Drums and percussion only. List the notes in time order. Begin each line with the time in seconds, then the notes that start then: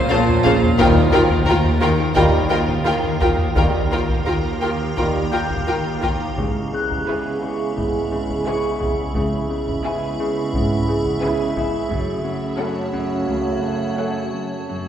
0.28 taiko low
0.45 taiko
0.63 taiko low
0.79 taiko
0.96 taiko low
1.13 taiko low
1.30 taiko
1.64 taiko low
2.16 taiko
2.68 taiko
3.03 taiko low
3.21 taiko
3.38 taiko low
3.56 taiko
4.09 taiko
4.98 taiko
5.50 taiko
6.03 taiko
6.38 taiko
6.92 taiko
7.78 taiko
8.30 taiko
8.81 taiko
9.15 taiko
9.68 taiko
10.54 taiko
11.05 taiko
11.56 taiko
11.90 taiko
12.93 taiko